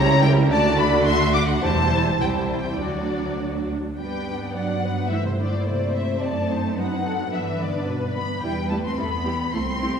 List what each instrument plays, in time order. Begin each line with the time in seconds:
Already playing: double bass section C#2, cello section C#3, viola section G3 E4, violin section C#5 A#5
0.22 violin section A#4 G5
0.50 double bass section D2, cello section D3, viola section A3 F#4, violin section D5 A5
0.78 violin section D5 B5
1.07 violin section E5 C6
1.34 violin section F#5 D6
1.63 double bass section E1, cello section E2, viola section G3 E4, violin section C5 A5
2.20 double bass section C2, cello section C2, viola section G3 E4, violin section C5 G5
2.30 violin section A5
2.38 violin section G5
2.46 violin section A5
2.54 violin section G5
2.79 double bass section D2, cello section D2, viola section F#3 D4, violin section F#4 D5
3.97 double bass section G2, cello section G3, viola section B3 D4, violin section B4 G5
4.55 cello section F#3, violin section D5 F#5
4.83 violin section B4
5.10 cello section E3, viola section A3 E4, violin section C5 E5
5.25 cello section C3, violin section C5
5.38 cello section D3, violin section D5
5.66 cello section C3, violin section C5 D5
5.95 violin section E5
6.21 double bass section F#2, cello section A3, viola section C4 D#4, violin section D5 A5
6.50 violin section C5
6.76 cello section F#3, violin section B4 F#5
7.05 violin section A4
7.32 double bass section G2, cello section E3, viola section B3 D4, violin section B4 E5
7.60 cello section D3, violin section D5
7.87 cello section B2, violin section B4
8.15 cello section B3, violin section B5
8.43 double bass section E2, viola section G3 E4, cello section G3, violin section B4 G5
8.70 viola section G3 E4, cello section A3, violin section A5
8.85 cello section C4, violin section C6
8.98 double bass section E2, viola section G3 E4, cello section B3, violin section A4 B5
9.25 viola section G3 E4, violin section G4
9.53 double bass section C2, viola section A3 E4, cello section C4, violin section A4 C6
9.81 viola section A3 E4, violin section G4